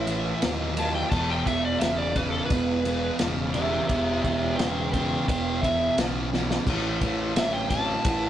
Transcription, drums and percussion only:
0.07 ride medium
0.42 snare loud
0.42 ride medium
0.77 ride medium
1.12 kick loud
1.12 crash medium
1.46 kick medium
1.46 ride medium
1.81 snare loud
1.81 ride loud
2.16 kick medium
2.16 ride medium
2.50 kick loud
2.50 ride medium
2.85 ride medium
3.19 snare loud
3.19 ride medium
3.54 ride medium
3.89 kick loud
3.89 ride medium
4.24 kick medium
4.24 ride medium
4.59 snare loud
4.59 ride medium
4.93 kick medium
4.93 ride medium
5.28 kick loud
5.28 ride medium
5.63 kick medium
5.63 ride medium
5.98 snare loud
5.98 ride medium
6.34 snare medium
6.51 snare medium
6.67 kick loud
6.67 crash loud
7.01 kick medium
7.01 ride medium
7.36 snare loud
7.36 ride loud
7.70 kick medium
7.70 ride medium
8.05 kick loud
8.05 ride loud

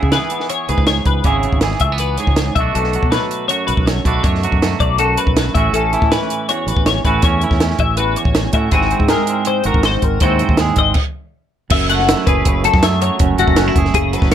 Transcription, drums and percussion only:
0.03 kick medium
0.12 snare loud
0.12 closed hi-hat medium
0.30 closed hi-hat medium
0.40 snare soft
0.49 closed hi-hat medium
0.69 closed hi-hat soft
0.78 kick medium
0.87 snare loud
0.87 closed hi-hat medium
1.05 kick medium
1.05 closed hi-hat medium
1.24 kick loud
1.24 closed hi-hat medium
1.43 closed hi-hat soft
1.52 kick medium
1.61 snare loud
1.61 closed hi-hat medium
1.71 snare soft
1.80 kick medium
1.80 closed hi-hat medium
1.98 closed hi-hat medium
2.17 closed hi-hat medium
2.27 kick medium
2.36 snare loud
2.36 closed hi-hat medium
2.56 kick medium
2.56 closed hi-hat medium
2.75 closed hi-hat medium
2.84 snare soft
2.93 closed hi-hat medium
3.03 kick medium
3.12 snare loud
3.12 closed hi-hat medium
3.31 closed hi-hat medium
3.49 closed hi-hat medium
3.68 closed hi-hat medium
3.77 kick medium
3.87 snare loud
3.87 closed hi-hat medium
4.05 kick medium
4.05 closed hi-hat medium
4.24 kick loud
4.24 closed hi-hat medium
4.35 snare soft
4.43 closed hi-hat soft
4.52 kick medium
4.62 snare loud
4.62 closed hi-hat medium
4.80 kick medium
4.80 closed hi-hat medium
4.98 closed hi-hat medium
5.17 closed hi-hat medium
5.27 kick medium
5.37 snare loud
5.37 closed hi-hat medium
5.55 kick loud
5.55 closed hi-hat medium
5.74 closed hi-hat medium
5.93 closed hi-hat soft
6.02 kick medium
6.12 snare loud
6.12 closed hi-hat medium
6.30 closed hi-hat medium
6.49 closed hi-hat medium
6.68 closed hi-hat medium
6.77 kick medium
6.86 snare loud
6.86 closed hi-hat medium
7.05 kick medium
7.05 closed hi-hat medium
7.22 kick loud
7.22 closed hi-hat medium
7.41 closed hi-hat soft
7.51 kick medium
7.51 snare soft
7.60 snare loud
7.60 closed hi-hat medium
7.70 snare soft
7.79 kick medium
7.79 closed hi-hat soft
7.97 closed hi-hat medium
8.16 closed hi-hat medium
8.25 kick medium
8.35 snare loud
8.35 closed hi-hat medium
8.53 kick medium
8.53 closed hi-hat medium
8.71 kick loud
8.71 closed hi-hat medium
8.82 snare soft
8.91 closed hi-hat soft
9.00 kick medium
9.08 snare loud
9.08 closed hi-hat medium
9.27 closed hi-hat medium
9.45 closed hi-hat medium
9.64 closed hi-hat medium
9.74 kick medium
9.83 snare loud
9.83 closed hi-hat medium
10.02 kick medium
10.02 closed hi-hat medium
10.20 kick loud
10.20 closed hi-hat medium
10.39 closed hi-hat soft
10.49 kick medium
10.57 snare loud
10.57 closed hi-hat medium
10.76 kick medium
10.76 closed hi-hat medium
10.94 kick loud
10.94 crash medium
11.70 kick loud
11.70 crash loud
11.90 closed hi-hat medium
11.99 snare soft
12.09 snare loud
12.09 closed hi-hat loud
12.27 kick medium
12.27 closed hi-hat medium
12.45 kick medium
12.45 closed hi-hat loud
12.64 closed hi-hat medium
12.73 kick loud
12.73 snare soft
12.83 snare loud
12.83 closed hi-hat loud
13.02 closed hi-hat medium
13.19 kick loud
13.19 closed hi-hat medium
13.38 closed hi-hat medium
13.48 kick medium
13.56 snare loud
13.56 closed hi-hat loud
13.76 kick medium
13.76 closed hi-hat medium
13.85 snare soft
13.94 kick medium
13.94 closed hi-hat loud
14.13 closed hi-hat medium
14.22 kick loud
14.22 snare soft
14.31 closed hi-hat loud

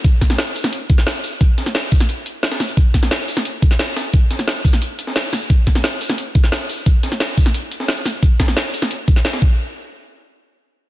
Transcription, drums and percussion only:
0.04 kick loud
0.04 closed hi-hat loud
0.04 closed hi-hat medium
0.21 kick medium
0.21 snare soft
0.21 closed hi-hat medium
0.30 snare soft
0.38 snare loud
0.38 closed hi-hat loud
0.38 closed hi-hat medium
0.47 closed hi-hat soft
0.56 closed hi-hat medium
0.56 open hi-hat medium
0.64 snare medium
0.64 snare soft
0.64 closed hi-hat soft
0.73 closed hi-hat medium
0.73 closed hi-hat loud
0.90 kick loud
0.90 closed hi-hat medium
0.98 snare soft
1.07 snare loud
1.07 closed hi-hat medium
1.15 closed hi-hat soft
1.24 closed hi-hat medium
1.24 open hi-hat medium
1.41 kick loud
1.41 closed hi-hat medium
1.58 snare soft
1.58 closed hi-hat medium
1.66 snare soft
1.75 snare loud
1.75 closed hi-hat medium
1.83 closed hi-hat soft
1.92 kick loud
1.92 closed hi-hat medium
1.92 open hi-hat medium
2.00 snare soft
2.00 closed hi-hat soft
2.09 closed hi-hat medium
2.26 closed hi-hat medium
2.43 snare loud
2.43 closed hi-hat medium
2.52 snare loud
2.52 closed hi-hat soft
2.52 closed hi-hat medium
2.60 snare soft
2.60 open hi-hat medium
2.69 closed hi-hat medium
2.77 kick loud
2.77 closed hi-hat medium
2.94 kick medium
2.94 snare soft
2.94 closed hi-hat medium
3.03 snare soft
3.11 snare loud
3.11 closed hi-hat medium
3.20 closed hi-hat soft
3.28 closed hi-hat medium
3.28 open hi-hat medium
3.37 snare medium
3.37 snare soft
3.45 closed hi-hat medium
3.62 kick loud
3.62 closed hi-hat medium
3.71 snare soft
3.79 snare loud
3.79 closed hi-hat medium
3.88 closed hi-hat soft
3.96 snare loud
3.96 closed hi-hat medium
3.96 open hi-hat medium
4.13 kick loud
4.13 closed hi-hat medium
4.31 snare soft
4.31 closed hi-hat medium
4.39 snare soft
4.48 snare loud
4.48 closed hi-hat medium
4.56 closed hi-hat soft
4.65 kick loud
4.65 closed hi-hat medium
4.65 open hi-hat medium
4.73 snare soft
4.73 closed hi-hat soft
4.82 closed hi-hat medium
4.99 closed hi-hat medium
5.07 snare soft
5.16 snare loud
5.16 closed hi-hat medium
5.24 closed hi-hat soft
5.33 snare soft
5.33 closed hi-hat medium
5.33 open hi-hat medium
5.50 kick loud
5.50 closed hi-hat medium
5.67 kick medium
5.67 snare soft
5.67 closed hi-hat medium
5.75 snare soft
5.84 snare loud
5.84 closed hi-hat medium
5.92 closed hi-hat soft
6.01 closed hi-hat medium
6.01 open hi-hat medium
6.09 snare medium
6.09 snare soft
6.09 closed hi-hat soft
6.18 closed hi-hat medium
6.35 kick loud
6.35 closed hi-hat medium
6.44 snare soft
6.52 snare loud
6.52 closed hi-hat medium
6.61 closed hi-hat soft
6.69 closed hi-hat medium
6.69 open hi-hat medium
6.86 kick loud
6.86 closed hi-hat loud
6.86 closed hi-hat medium
7.03 snare soft
7.03 closed hi-hat medium
7.12 snare soft
7.20 snare loud
7.20 closed hi-hat loud
7.20 closed hi-hat medium
7.29 closed hi-hat soft
7.37 kick loud
7.37 closed hi-hat medium
7.37 open hi-hat medium
7.46 snare soft
7.46 closed hi-hat soft
7.54 closed hi-hat loud
7.54 closed hi-hat medium
7.71 closed hi-hat medium
7.80 snare soft
7.88 snare loud
7.88 closed hi-hat medium
7.97 closed hi-hat soft
8.06 snare soft
8.06 closed hi-hat medium
8.06 open hi-hat medium
8.23 kick loud
8.23 closed hi-hat medium
8.40 kick medium
8.40 snare loud
8.40 snare soft
8.40 closed hi-hat medium
8.48 snare soft
8.57 snare loud
8.57 closed hi-hat loud
8.57 closed hi-hat medium
8.65 closed hi-hat soft
8.74 closed hi-hat medium
8.74 open hi-hat medium
8.82 snare medium
8.82 snare soft
8.82 closed hi-hat soft
8.91 closed hi-hat loud
8.91 closed hi-hat medium
9.08 kick loud
9.08 closed hi-hat medium
9.16 snare soft
9.25 snare loud
9.25 closed hi-hat loud
9.25 closed hi-hat medium
9.33 snare loud
9.33 closed hi-hat soft
9.33 closed hi-hat medium
9.42 kick loud

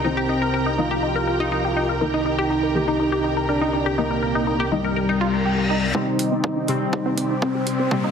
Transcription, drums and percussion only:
5.95 kick loud
6.19 open hi-hat loud
6.44 kick loud
6.68 open hi-hat loud
6.93 kick loud
7.18 open hi-hat loud
7.42 kick loud
7.67 open hi-hat loud
7.91 kick loud

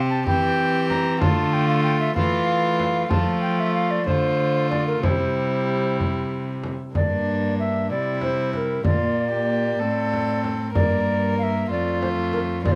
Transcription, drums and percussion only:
0.27 frame drum medium
0.90 frame drum soft
1.22 frame drum medium
2.16 frame drum medium
2.80 frame drum soft
3.11 frame drum medium
4.07 frame drum soft
4.72 frame drum soft
5.03 frame drum medium
6.00 frame drum soft
6.64 frame drum soft
6.95 frame drum medium
8.22 frame drum soft
8.53 frame drum soft
8.85 frame drum medium
10.13 frame drum soft
10.44 frame drum soft
10.75 frame drum medium
12.03 frame drum soft
12.33 frame drum soft
12.65 frame drum medium

